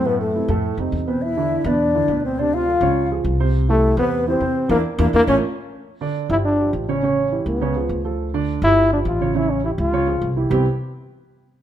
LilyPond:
<<
  \new Staff \with { instrumentName = "Flute" } { \time 4/4 \key c \major \tempo 4 = 207 b'8 a'2 r4 c''8 | e''4. d''2 c''8 | d''8 f''2 r4. | r8 a'4 b'4 c''4. |
bes'8 r8 bes'8 bes'8 cis''8 r4. | r1 | r1 | r1 |
r1 | r1 | }
  \new Staff \with { instrumentName = "Grand piano" } { \time 4/4 \key c \major <a, a a'>4 <c c' e'>8 <a, a a'>4 <c c' ees'>4 <b, b b'>8~ | <b, b b'>8 <d d' e'>4 <b, b b'>4 <d d' e'>8 <b, b b'>4 | <c c' c''>4 <f f' a'>8 <des des' des''>4 <f f' aes'>4 <c c' c''>8~ | <c c' c''>8 <e e' g'>4 <c c' c''>4 <e e' g'>8 <c c' c''>4 |
<bes d' e'>8 r8 <bes d' e'>8 <bes d' e'>8 <a cis' eis'>8 r4. | r8 <d d' d''>4 <f f' g'>4 <f f' g'>4 <des des' des''>8 | <cis cis' cis''>4 <e e' g'>4 <des des' des''>8 <f f' aes'>4 <f f' a'>8~ | <f f' a'>8 <d d' d''>4 <f f' g'>4 <f f' g'>4 <cis cis' cis''>8 |
<cis cis' cis''>4 <e e' g'>4 <des des' des''>8 <f f' aes'>4 <e e' g'>8 | <c g b c' e' g'>8 r2. r8 | }
  \new Staff \with { instrumentName = "Trombone" } { \time 4/4 \key c \major b8 a2 r4 c'8 | e'4. d'2 c'8 | d'8 f'2 r4. | r8 a4 b4 c'4. |
bes8 r8 bes8 bes8 cis'8 r4. | r4. e'8 d'4 r8 des'8~ | des'4. b2 r8 | r4. e'4 d'8 f'4 |
e'8 cis'8 e'8 f'2 r8 | c'8 r2. r8 | }
  \new Staff \with { instrumentName = "Upright bass" } { \clef bass \time 4/4 \key c \major fis,4. f,4 f,8 e,4~ | e,4. e,4. d,4~ | d,4. des,4. c,4~ | c,4. e,4. e,4 |
e,8 r8 e,8 e,8 a,,8 r4. | r4. g,,4. a,,4~ | a,,4. cis,4. d,4~ | d,4. g,,4. a,,4~ |
a,,4. cis,4. c,4 | c,8 r2. r8 | }
>>